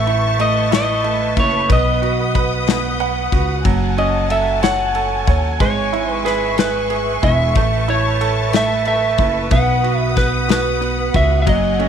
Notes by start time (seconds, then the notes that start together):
Already playing: A1 A3 B4 E5 A5 C#6
0.07 E4, ride
0.39 A3 D#5, ride
0.71 E4 D#5, snare, ride
1.04 A3, ride
1.37 F#1 E4 C#5, kick, ride
1.69 B1 B3 D#5 F#5 D#6, kick, ride
2.02 F#4, ride
2.35 B4, kick, ride
2.67 B3, snare, ride
3.00 B4 F#5, ride
3.32 C#2 F#4, kick, ride
3.65 F#1 F#3 G#5 A5, kick, ride
3.98 C#4 D#5, ride
4.30 A4 E5, ride
4.63 C#5 F#5, snare, ride
4.95 A4, ride
5.27 D#2 C#5, kick, ride
5.60 G#1 G#3 C#5 E5 C#6, kick, ride
5.93 E4, ride
6.11 B4
6.25 G#4 B4, snare, ride
6.58 G#3 B4, snare, ride
6.90 G#4, ride
7.23 E1 E4 E5, kick, ride
7.55 A1 A3 B4 A5, kick, ride
7.88 E4 C#5, ride
8.21 A4, ride
8.53 A3 E5, snare, ride
8.85 A4 E5, ride
9.18 F#1 E4, kick, ride
9.51 B1 B3 F#5 D#6, kick, ride
9.84 F#4, ride
9.98 E5
10.17 B3 B4, kick, snare, ride
10.48 F#4 B4, snare, ride
10.81 B3, ride
11.14 C#2 F#4 E5, kick, ride
11.42 E5
11.47 F#1 F#3 D#5 G#5, kick, ride
11.79 A3 C#4, ride